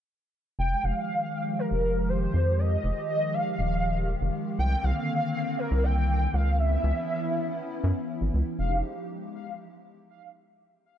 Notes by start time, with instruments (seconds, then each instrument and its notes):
0.59 analog synth bass F1, analog synth pad D#3 F3 G#3 G4, soft synth lead G5
0.84 analog synth bass F1, soft synth lead F5
1.59 soft synth lead A#4
1.71 analog synth bass F1
2.09 soft synth lead C5
2.34 analog synth bass F2
2.59 soft synth lead D#5
2.84 analog synth bass F1
3.09 soft synth lead D#5
3.34 soft synth lead F5
3.59 analog synth bass D#1
4.21 analog synth bass F1
4.59 analog synth bass C2, analog synth pad D3 A#3 C4, soft synth lead G5
4.84 analog synth bass C2, soft synth lead F5
5.59 soft synth lead A#4
5.71 analog synth bass C2
5.84 soft synth lead G5
6.34 analog synth bass C#2, soft synth lead F5
6.59 analog synth pad E3 B3 C#4 E4, soft synth lead E5
6.84 analog synth bass C#2
7.84 analog synth bass F#2
8.21 analog synth bass G#1
8.34 analog synth bass C#2
8.59 analog synth bass F1, analog synth pad F3 G#3 D#4 G4, soft synth lead F5